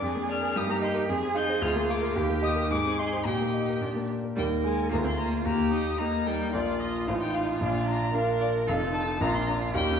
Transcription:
Already playing: viola D4
0.02 grand piano F2, cello G#4
0.15 grand piano A#3
0.29 grand piano D5, violin F6
0.42 grand piano A#4
0.56 grand piano G2, viola D#4, cello G4, violin D#6
0.68 grand piano A#3, violin A#5
0.82 grand piano D#5, violin C6
0.94 grand piano A#4
1.09 grand piano F2, viola G#4, cello G#4
1.22 grand piano C4
1.35 cello D#4, grand piano F5, violin G6
1.49 grand piano C5
1.61 grand piano D2, cello F4, violin F6
1.75 grand piano A#3, violin C6
1.90 grand piano F5, violin D6
2.02 grand piano A#4
2.15 grand piano D#2, cello G4, viola G4
2.30 grand piano A#3
2.42 grand piano D#5, violin D#6
2.56 grand piano A#4
2.69 grand piano G#2, viola D#4, cello G#4, violin D6
2.85 grand piano C4
2.98 grand piano D#5, violin C6
3.13 grand piano C5
3.25 grand piano A#2, cello G4, violin G5
3.41 grand piano A#3
3.54 grand piano D#5
3.69 grand piano A#4
3.81 grand piano A#2, viola D4
3.96 grand piano A#3
4.11 grand piano D5
4.24 grand piano A#4
4.36 grand piano D#2 D#3 A#3 G4 A#4, viola G3, cello A#4, violin G5
4.64 viola G#3, violin G#5
4.91 grand piano D2 D3 A#3 G#4 A#4, viola A#3, cello F4, violin A#5
5.04 viola C4, violin C6
5.18 viola A#3, violin A#5
5.45 grand piano D#2 D#3, viola A#3, cello G4, violin A#5
5.72 viola D#4, violin D#6
5.98 viola A#3, grand piano A#3 G4 A#4, cello D#4, violin A#5
6.26 viola G3, violin G5
6.53 grand piano A#1 A#2 A#3 F4 A#4, cello F4, viola F4, violin D5
6.79 violin D#5
7.06 grand piano A1 A2 D#4 F4 C5, viola D#4, cello F4, violin F5
7.22 violin G5
7.34 violin F5
7.61 grand piano A#1 A#2, viola D4, violin F5
7.88 violin A#5
8.12 viola D4, grand piano D4 F4 A#4, cello A#4, violin F5
8.41 violin D5
8.67 grand piano F1 F2 D#4 F4 A4, viola D#4, cello A4, violin F5
8.93 violin A5
9.21 grand piano A#1 A#2 D4 F4 A#4, viola D4, cello F4, violin A#5
9.34 violin C6
9.47 violin A#5
9.74 grand piano D#2 D#3 C#4 D#4 A#4, viola C#4, cello G4, violin G5

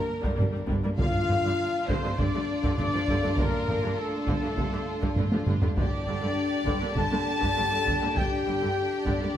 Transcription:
Already playing: french horn section A#3, violin section D4 A#4, trumpet section A#4
0.22 cello section G2, viola section D3 G3, taiko
0.37 double bass section G1, viola section G3 A#3, taiko low-mid
0.41 cello section G2
0.52 viola section G3
0.57 cello section G2
0.68 double bass section G1, cello section G2, viola section D3 G3, taiko
0.84 cello section G2, viola section G3 A#3
0.99 double bass section G1, cello section G2, timpani G2, viola section D3, violin section D4 F4 F5, french horn section F4, trumpet section F5, taiko
1.15 taiko low-mid
1.29 double bass section G1, cello section G2, viola section D3 F3, taiko low-mid
1.45 cello section G2, viola section D3
1.88 double bass section G1, cello section G2, viola section D3, french horn section C4, violin section C5, trumpet section C5, taiko
2.04 cello section G2, viola section D3 A3
2.17 double bass section G1, cello section G2, viola section D3, french horn section D4, trumpet section D5, violin section D5, taiko
2.34 cello section G2, viola section D3 A3
2.63 cello section G2, viola section D3, taiko
2.77 double bass section G1, cello section G2, viola section D3 A3, french horn section D4, violin section D5, trumpet section D5, taiko low-mid
2.93 cello section G2, viola section D3 F3
3.08 double bass section G1, cello section G2, viola section D3, taiko
3.23 cello section G2, viola section D3 A3
3.38 double bass section G1, cello section G2, viola section D3, french horn section A#3, trumpet section A#4, violin section A#4, taiko
3.54 taiko low-mid
3.68 double bass section G1, cello section G2, viola section D3 F3, taiko low-mid
3.83 cello section G2, viola section D3
3.98 french horn section A3, violin section A4, trumpet section A4
4.27 double bass section G1, cello section G2, viola section D3, taiko
4.43 cello section G2, viola section D3 A3
4.57 double bass section G1, cello section G2, viola section D3, taiko
4.72 cello section G2, viola section D3 A3
5.02 cello section G2, viola section D3, taiko
5.16 double bass section G1, cello section G2, viola section D3 A3, taiko low-mid
5.32 cello section G2, viola section D3 F3, taiko high
5.46 double bass section G1, cello section G2, viola section D3, taiko low-mid
5.62 cello section G2, viola section D3 A3, taiko low
5.76 double bass section G1, cello section G2, timpani G2, viola section D3, french horn section D4, violin section D4 G4 D5, trumpet section D5, taiko
6.06 double bass section G1, cello section G2, viola section D3 G3
6.21 cello section G2, viola section D3
6.66 double bass section G1, cello section G2, viola section D3, taiko
6.82 cello section G2, viola section D3 A#3
6.96 double bass section G1, cello section G2, viola section D3, french horn section A4, trumpet section A5, violin section A5, taiko
7.12 cello section G2, viola section D3 A#3
7.41 cello section G2, viola section D3, taiko
7.56 double bass section G1, cello section G2, viola section D3 A#3
7.70 cello section G2, viola section D3 G3
7.85 double bass section G1, cello section G2, viola section D3, taiko
8.01 cello section G2, viola section D3 A#3
8.16 double bass section G1, cello section G2, viola section D3, french horn section G4, trumpet section G5, violin section G5, taiko
8.46 double bass section G1, cello section G2, viola section D3 G3
8.61 cello section G2, viola section D3
9.06 double bass section G1, cello section G2, viola section D3, french horn section D4, trumpet section D5, violin section D5, taiko
9.21 cello section G2, viola section D3 A#3

